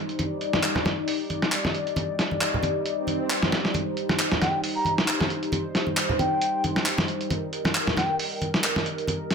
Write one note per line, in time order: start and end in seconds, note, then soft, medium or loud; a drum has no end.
0.00 9.35 G3 medium
0.00 9.35 D#4 medium
0.00 0.18 C5 medium
0.09 closed hi-hat soft
0.19 3.74 D5 medium
0.19 closed hi-hat medium
0.19 high conga medium
0.41 closed hi-hat medium
0.53 snare soft
0.53 high conga medium
0.63 clap medium
0.63 closed hi-hat medium
0.75 snare soft
0.75 low conga medium
0.85 snare soft
0.85 closed hi-hat medium
0.85 high conga medium
1.08 open hi-hat medium
1.30 closed hi-hat medium
1.30 high conga medium
1.42 snare soft
1.52 clap medium
1.52 closed hi-hat medium
1.65 snare soft
1.65 high conga medium
1.75 closed hi-hat medium
1.87 closed hi-hat soft
1.96 closed hi-hat medium
1.96 high conga medium
2.19 snare soft
2.19 closed hi-hat medium
2.31 high conga medium
2.41 clap medium
2.41 closed hi-hat medium
2.54 low conga medium
2.63 closed hi-hat medium
2.63 high conga medium
2.86 closed hi-hat medium
2.86 swell medium
3.07 closed hi-hat medium
3.07 high conga medium
3.30 clap loud
3.30 closed hi-hat medium
3.42 snare soft
3.42 high conga medium
3.52 snare loud
3.52 closed hi-hat medium
3.65 snare soft
3.74 7.29 C5 medium
3.74 closed hi-hat medium
3.74 high conga medium
3.97 closed hi-hat medium
4.09 snare soft
4.09 high conga medium
4.19 clap medium
4.19 closed hi-hat medium
4.32 snare soft
4.32 low conga medium
4.42 4.60 G5 medium
4.42 snare soft
4.42 closed hi-hat medium
4.42 high conga medium
4.64 open hi-hat medium
4.76 4.94 A#5 medium
4.85 closed hi-hat medium
4.85 high conga medium
4.98 snare soft
5.08 clap loud
5.08 closed hi-hat medium
5.21 snare soft
5.21 high conga medium
5.30 closed hi-hat medium
5.43 closed hi-hat soft
5.52 closed hi-hat medium
5.52 high conga medium
5.75 snare soft
5.75 closed hi-hat medium
5.87 high conga medium
5.97 clap loud
5.97 closed hi-hat medium
6.09 low conga medium
6.19 6.64 G5 medium
6.19 closed hi-hat medium
6.19 high conga medium
6.41 closed hi-hat medium
6.64 closed hi-hat medium
6.64 high conga medium
6.76 snare medium
6.86 clap loud
6.86 closed hi-hat medium
6.98 snare soft
6.98 high conga medium
7.08 closed hi-hat medium
7.21 closed hi-hat soft
7.30 9.35 A#4 medium
7.30 closed hi-hat medium
7.30 high conga medium
7.53 closed hi-hat medium
7.65 snare soft
7.65 high conga medium
7.75 clap loud
7.75 closed hi-hat medium
7.87 snare soft
7.87 low conga medium
7.97 8.16 G5 medium
7.97 snare soft
7.97 closed hi-hat medium
7.97 high conga medium
8.19 open hi-hat medium
8.41 closed hi-hat medium
8.41 high conga medium
8.54 snare soft
8.64 clap loud
8.64 closed hi-hat medium
8.76 snare soft
8.76 high conga medium
8.86 closed hi-hat medium
8.98 closed hi-hat soft
9.07 closed hi-hat medium
9.07 high conga medium
9.31 snare soft
9.31 closed hi-hat medium